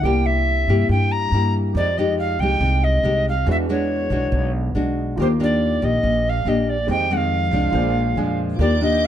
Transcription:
0.02 0.64 C2 medium
0.02 0.88 C3 soft
0.02 0.66 A#3 soft
0.02 1.71 E4 soft
0.02 0.65 E4 medium
0.02 1.71 G4 soft
0.02 1.72 A#4 soft
0.02 0.27 G5 medium
0.06 0.66 G4 medium
0.06 1.73 D5 soft
0.26 0.90 E5 medium
0.68 0.88 G2 medium
0.68 1.30 A#3 soft
0.68 1.30 E4 medium
0.68 1.30 G4 medium
0.89 1.29 G2 medium
0.89 1.74 G2 soft
0.89 1.13 G5 medium
1.12 1.54 A#5 loud
1.32 1.72 G2 medium
1.32 1.73 A#3 soft
1.32 1.73 E4 medium
1.32 1.73 G4 medium
1.73 2.35 F2 medium
1.73 2.59 F3 soft
1.73 1.89 G#3 soft
1.73 3.42 G4 soft
1.73 3.44 C5 soft
1.73 1.99 D5 medium
1.77 1.89 D#4 soft
1.77 1.89 G4 soft
1.77 3.45 D#5 soft
1.97 2.37 G#3 medium
1.97 2.37 D#4 medium
1.97 2.37 G4 medium
1.97 2.18 D#5 medium
2.19 2.41 F5 medium
2.39 2.59 C2 medium
2.39 3.02 G#3 medium
2.39 3.02 D#4 soft
2.39 3.02 G4 medium
2.39 2.85 G5 loud
2.60 3.01 C2 medium
2.60 3.45 C3 soft
2.84 3.26 D#5 medium
3.03 3.43 C2 medium
3.03 3.33 G#3 medium
3.03 3.33 D#4 soft
3.03 3.33 G4 medium
3.29 3.47 F5 medium
3.45 4.07 E2 medium
3.45 4.30 E3 soft
3.45 3.65 G#3 medium
3.45 3.65 D4 soft
3.45 5.13 F#4 soft
3.45 3.65 F#4 soft
3.45 5.14 G#4 soft
3.45 5.15 B4 soft
3.51 5.16 D4 soft
3.51 3.57 E5 medium
3.69 4.08 G#3 medium
3.69 4.08 D4 medium
3.69 4.08 F#4 medium
3.69 4.51 C#5 medium
4.10 4.30 B1 medium
4.10 4.72 G#3 medium
4.10 4.72 D4 soft
4.10 4.72 F#4 medium
4.32 4.72 B1 medium
4.32 5.16 B2 soft
4.75 5.15 B1 medium
4.75 5.16 G#3 medium
4.75 5.16 D4 medium
4.75 5.17 F#4 medium
5.16 5.78 D#2 medium
5.16 6.02 D#3 soft
5.16 5.31 A#3 soft
5.16 5.31 D4 soft
5.16 6.85 F4 soft
5.16 6.85 G4 soft
5.16 5.31 G4 medium
5.16 6.87 A#4 soft
5.21 5.27 C5 medium
5.21 6.88 D6 medium
5.40 5.79 A#3 medium
5.40 5.79 D4 medium
5.40 5.79 G4 medium
5.40 5.86 D5 medium
5.82 6.02 A#1 medium
5.82 6.43 A#3 medium
5.82 6.43 G4 medium
5.82 6.31 D#5 medium
6.03 6.43 A#1 medium
6.03 6.87 A#2 soft
6.29 6.50 F5 medium
6.45 6.85 A#1 medium
6.45 6.75 A#3 medium
6.45 6.75 D4 medium
6.45 6.76 G4 medium
6.45 6.71 D#5 medium
6.69 6.90 D5 medium
6.87 7.49 F2 medium
6.87 7.72 F2 medium
6.87 7.07 D#3 soft
6.87 7.07 G#3 soft
6.87 7.07 C4 medium
6.87 7.72 G4 soft
6.87 7.72 G#4 soft
6.87 7.14 G5 loud
6.91 7.73 C5 soft
6.91 7.75 D#5 soft
7.10 7.50 D#3 medium
7.10 7.50 G#3 medium
7.10 7.50 C4 medium
7.10 7.18 F#5 medium
7.17 8.40 F5 medium
7.51 7.72 C2 medium
7.51 8.14 F3 medium
7.51 8.14 G#3 medium
7.51 8.14 D4 medium
7.71 8.13 A#1 medium
7.71 8.58 A#2 soft
7.71 8.55 F4 medium
7.71 8.58 G#4 soft
7.75 8.59 C5 medium
7.75 8.60 D5 medium
8.16 8.56 F2 medium
8.16 8.58 F3 medium
8.16 8.58 G#3 soft
8.16 8.59 D4 soft
8.16 8.27 G#5 medium
8.27 8.58 F5 soft
8.56 9.07 D#2 medium
8.56 9.07 D#3 soft
8.56 8.73 A#3 medium
8.56 9.07 F4 soft
8.56 9.07 G4 soft
8.56 9.07 G5 medium
8.56 9.07 D6 medium
8.56 9.07 G6 medium
8.61 8.73 D4 soft
8.61 8.73 G4 medium
8.61 9.07 A#4 soft
8.61 8.81 D5 medium
8.61 9.07 D6 soft
8.81 9.07 A#3 medium
8.81 9.07 D4 medium
8.81 9.07 G4 medium
8.81 9.07 D#5 medium

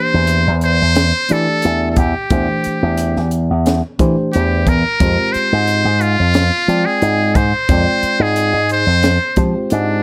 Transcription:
0.00 0.50 E3 medium
0.00 0.51 A#3 medium
0.00 0.51 D4 medium
0.00 0.51 G4 medium
0.00 0.51 C5 medium
0.00 0.59 C5 loud
0.14 0.43 E2 medium
0.27 closed hi-hat medium
0.47 0.77 E2 medium
0.61 1.34 C5 loud
0.61 closed hi-hat medium
0.82 1.11 E2 medium
0.95 snare loud
0.95 closed hi-hat medium
1.29 1.96 E3 medium
1.29 1.46 E3 medium
1.29 1.96 A3 soft
1.29 1.96 D4 medium
1.29 1.97 G4 medium
1.29 1.91 A4 medium
1.29 1.97 D5 medium
1.29 closed hi-hat medium
1.62 1.94 E2 medium
1.62 closed hi-hat medium
1.92 2.00 A4 medium
1.96 2.13 E2 medium
1.96 3.33 G4 medium
1.96 kick medium
1.96 closed hi-hat medium
2.30 2.47 E2 loud
2.30 3.20 E3 medium
2.30 3.20 A3 medium
2.30 3.20 D4 medium
2.30 3.21 G4 medium
2.30 3.21 C5 medium
2.30 kick loud
2.30 closed hi-hat medium
2.64 muted slap bass stroke soft
2.64 closed hi-hat medium
2.82 3.13 E2 medium
2.97 closed hi-hat medium
3.16 3.47 E2 medium
3.16 snare soft
3.31 closed hi-hat medium
3.51 3.80 E2 medium
3.66 snare medium
3.66 closed hi-hat medium
3.99 4.66 E3 medium
3.99 4.15 E3 medium
3.99 4.66 A3 medium
3.99 4.66 D4 medium
3.99 4.66 G4 medium
3.99 4.66 C5 medium
3.99 kick medium
3.99 closed hi-hat medium
4.33 4.64 E2 medium
4.33 4.70 G4 medium
4.33 closed hi-hat medium
4.67 4.83 E2 medium
4.67 5.34 A#4 medium
4.67 kick medium
4.67 closed hi-hat medium
5.00 5.16 F2 medium
5.00 5.90 G#3 medium
5.00 5.90 C4 medium
5.00 5.90 F4 medium
5.00 5.91 G4 medium
5.00 5.91 C5 medium
5.00 kick loud
5.00 closed hi-hat medium
5.33 6.03 C5 loud
5.33 muted slap bass stroke soft
5.33 closed hi-hat medium
5.52 5.82 G#2 medium
5.67 closed hi-hat medium
5.85 6.15 G#2 medium
6.01 6.87 F4 loud
6.01 closed hi-hat soft
6.19 6.49 F2 medium
6.34 snare loud
6.34 closed hi-hat medium
6.68 6.84 F3 medium
6.68 7.35 G#3 medium
6.68 7.35 C4 medium
6.68 7.35 F4 medium
6.68 7.36 D5 medium
6.68 7.35 G5 medium
6.68 closed hi-hat medium
6.86 7.37 G#4 medium
7.02 7.32 G#2 medium
7.02 closed hi-hat medium
7.35 7.51 G#2 medium
7.35 8.23 C5 medium
7.35 kick medium
7.35 closed hi-hat medium
7.69 7.85 F2 loud
7.69 8.59 G#3 medium
7.69 8.59 C4 medium
7.69 8.59 F4 medium
7.69 8.60 D5 medium
7.69 8.59 G5 medium
7.69 kick loud
7.69 closed hi-hat medium
8.03 muted slap bass stroke soft
8.03 closed hi-hat medium
8.20 8.50 G#2 medium
8.20 8.71 G#4 medium
8.36 closed hi-hat medium
8.53 8.84 G#2 medium
8.69 9.42 C5 loud
8.69 closed hi-hat medium
8.87 9.17 F2 medium
9.03 snare loud
9.03 closed hi-hat medium
9.36 9.53 F3 medium
9.36 10.03 G#3 medium
9.36 10.03 C4 medium
9.36 10.03 F4 medium
9.36 10.03 G4 medium
9.36 10.03 C5 medium
9.36 kick medium
9.36 closed hi-hat medium
9.70 10.02 G#2 medium
9.70 10.03 D4 medium
9.70 closed hi-hat medium

